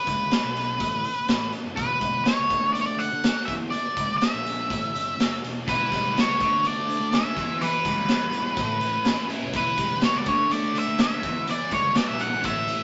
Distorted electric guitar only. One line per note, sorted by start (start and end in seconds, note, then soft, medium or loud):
5.67 6.39 E3 medium
5.92 6.40 G3 medium
6.16 6.40 B3 medium
6.39 6.86 D3 medium
6.63 7.36 A3 medium
6.88 7.35 D3 medium
7.12 7.36 C#4 medium
7.35 7.58 E3 medium
7.59 8.31 E3 medium
7.85 8.57 G3 medium
8.08 8.57 B3 medium
8.32 8.57 E3 medium
8.56 9.54 A2 medium
8.80 9.53 E3 medium
9.04 9.53 C#4 medium
9.29 9.54 E4 medium
9.54 10.26 E3 medium
9.78 10.26 G3 medium
10.01 10.26 B3 medium
10.26 10.73 D3 medium
10.51 11.23 A3 medium
10.74 11.23 D3 medium
11.00 11.24 C#4 medium
11.23 11.47 E3 medium
11.48 12.20 E3 medium
11.72 12.44 G3 medium
11.96 12.44 B3 medium
12.21 12.45 E3 medium
12.44 12.83 A2 medium
12.69 12.83 E3 medium